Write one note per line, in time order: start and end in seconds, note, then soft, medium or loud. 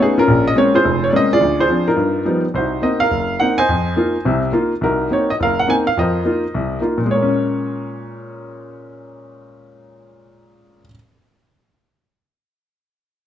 0.00 0.17 A3 medium
0.00 0.18 B3 medium
0.00 0.16 C#4 soft
0.00 0.18 D#4 medium
0.00 0.14 F#4 medium
0.00 0.18 G#4 medium
0.00 0.13 A4 medium
0.18 0.55 C#4 medium
0.18 0.70 F4 medium
0.18 0.44 A#4 loud
0.28 0.52 A#1 medium
0.48 0.57 D#5 medium
0.56 0.74 G#3 medium
0.56 0.74 A#3 medium
0.56 0.74 C4 medium
0.56 0.75 C#4 medium
0.56 0.75 C#5 medium
0.74 1.26 F4 medium
0.74 1.27 G#4 medium
0.74 1.03 C5 medium
0.85 1.09 F1 medium
1.04 1.11 C#5 medium
1.10 1.31 G#3 medium
1.10 1.31 A#3 medium
1.10 1.31 C4 medium
1.10 1.31 C#4 medium
1.10 1.13 D5 medium
1.16 1.32 D#5 medium
1.33 1.58 F4 medium
1.33 1.59 G#4 medium
1.33 1.60 D5 loud
1.41 1.65 D2 medium
1.60 1.86 F4 medium
1.60 1.96 G#4 medium
1.60 1.88 C5 medium
1.69 1.87 F3 medium
1.69 1.88 C4 medium
1.69 1.88 D4 medium
1.88 2.25 D#4 medium
1.88 2.40 F4 medium
1.88 2.40 A#4 medium
1.96 2.21 G2 medium
2.25 2.44 F3 medium
2.25 2.44 G3 medium
2.25 2.44 B3 soft
2.25 2.44 D#4 medium
2.54 2.79 C2 medium
2.54 3.09 F#4 soft
2.54 2.84 C5 medium
2.58 2.81 D#4 soft
2.82 3.01 A#3 medium
2.82 3.01 C4 medium
2.82 3.01 D#4 medium
2.82 3.01 D#5 medium
3.00 3.54 A#4 medium
3.00 3.41 F5 loud
3.11 3.35 F#1 medium
3.40 3.58 A#3 medium
3.40 3.59 C4 soft
3.40 3.59 D#4 medium
3.40 3.57 F#5 medium
3.58 4.39 C5 medium
3.58 4.39 D#5 medium
3.58 4.39 G#5 loud
3.69 3.93 F2 medium
3.96 4.15 A#3 medium
3.96 4.15 D#4 medium
3.96 4.15 F4 medium
4.25 4.50 C2 medium
4.25 4.49 C3 medium
4.52 4.71 A#3 medium
4.52 4.72 D#4 soft
4.52 4.72 F4 medium
4.81 5.06 C2 medium
4.81 5.10 D#4 medium
4.81 5.36 F#4 soft
4.81 5.12 A#4 medium
5.11 5.29 A#3 medium
5.11 5.29 C4 soft
5.11 5.29 D#4 medium
5.11 5.29 C#5 medium
5.30 5.35 D#5 medium
5.40 5.64 F#1 medium
5.40 5.94 A#4 medium
5.40 5.58 F5 medium
5.59 5.69 F#5 medium
5.67 5.86 A#3 medium
5.67 5.86 C4 soft
5.67 5.86 D#4 medium
5.67 5.75 G#5 medium
5.87 5.97 F5 medium
5.97 6.21 F2 medium
5.97 6.21 F3 medium
5.97 6.79 A#4 medium
5.97 6.79 C5 medium
5.97 6.79 D#5 medium
6.25 6.43 A#3 soft
6.25 6.43 D#4 soft
6.25 6.43 F4 medium
6.54 6.78 C2 medium
6.81 6.99 A#3 soft
6.81 7.00 D#4 soft
6.81 7.00 F4 medium
6.98 10.81 A#2 medium
7.06 10.85 G#3 medium
7.11 10.90 A#3 soft
7.11 10.84 C#5 medium
7.23 10.94 C#4 medium